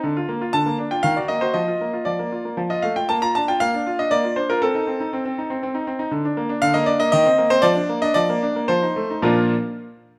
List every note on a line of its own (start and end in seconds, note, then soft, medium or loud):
0.04 0.16 D3 medium
0.17 0.30 F4 medium
0.29 0.42 A#3 medium
0.41 0.55 F4 medium
0.53 0.66 D3 medium
0.53 0.76 A5 loud
0.66 0.79 A#3 medium
0.78 0.92 D4 medium
0.91 1.04 F4 medium
0.91 1.04 G5 medium
1.03 1.17 D#3 medium
1.03 1.16 F5 loud
1.16 1.30 F#4 soft
1.16 1.30 D5 medium
1.28 1.43 A#3 soft
1.28 1.42 D#5 medium
1.41 1.55 F#4 medium
1.41 1.55 C5 medium
1.54 1.67 F3 medium
1.54 2.06 D#5 medium
1.68 1.81 F4 soft
1.81 1.94 A#3 soft
1.93 2.07 F4 soft
2.05 2.19 F3 medium
2.05 2.70 D5 medium
2.19 2.33 A#3 medium
2.32 2.45 F4 soft
2.45 2.58 A#3 soft
2.57 2.70 F3 medium
2.70 2.84 F4 soft
2.70 2.83 D#5 medium
2.82 2.97 A3 medium
2.82 2.96 F5 medium
2.96 3.09 F4 soft
2.96 3.09 G5 medium
3.09 3.22 A#3 medium
3.09 3.22 A5 loud
3.22 3.36 F4 medium
3.22 3.35 A#5 loud
3.35 3.49 D4 medium
3.35 3.48 A5 loud
3.48 3.62 F4 medium
3.48 3.61 G5 medium
3.60 3.73 A#3 medium
3.60 3.99 F5 loud
3.74 3.87 D4 medium
3.87 4.00 F4 medium
3.99 4.12 D4 medium
3.99 4.12 D#5 medium
4.11 4.24 A#3 medium
4.11 4.36 D5 loud
4.24 4.37 F4 medium
4.36 4.50 D4 medium
4.36 4.49 C5 medium
4.50 4.62 F4 medium
4.50 4.62 A#4 medium
4.62 4.75 C4 medium
4.62 5.87 A4 medium
4.75 4.88 D#4 medium
4.87 5.01 C4 medium
5.00 5.13 D#4 medium
5.13 5.24 C4 medium
5.25 5.38 C4 medium
5.38 5.51 D#4 medium
5.50 5.62 C4 medium
5.63 5.75 C4 medium
5.75 5.88 D#4 medium
5.87 6.00 C4 medium
5.99 6.12 D#4 medium
6.11 6.24 D3 medium
6.25 6.38 D4 medium
6.37 6.50 A#3 medium
6.49 6.63 D4 medium
6.62 6.75 D3 medium
6.62 6.75 F5 loud
6.74 6.88 A#3 medium
6.74 6.87 D#5 loud
6.86 7.01 D4 medium
6.86 7.00 D5 loud
7.00 7.13 A#3 medium
7.00 7.10 D#5 loud
7.12 7.26 D#3 medium
7.12 7.51 D#5 loud
7.26 7.39 C4 medium
7.38 7.52 A#3 medium
7.50 7.64 C4 medium
7.50 7.64 C5 loud
7.62 7.76 F3 medium
7.62 7.98 D5 loud
7.75 7.90 D4 medium
7.89 8.04 A#3 medium
8.02 8.16 D4 medium
8.02 8.16 D#5 loud
8.14 8.29 F3 medium
8.14 8.64 D5 loud
8.29 8.43 A#3 medium
8.43 8.57 D4 medium
8.56 8.69 A#3 medium
8.68 8.82 F3 medium
8.68 9.20 C5 loud
8.83 8.97 D#4 medium
8.96 9.11 A3 medium
9.11 9.24 D#4 medium
9.22 9.53 A#2 medium
9.22 9.53 F3 medium
9.22 9.54 D4 medium
9.22 9.54 F4 medium
9.22 9.54 A#4 medium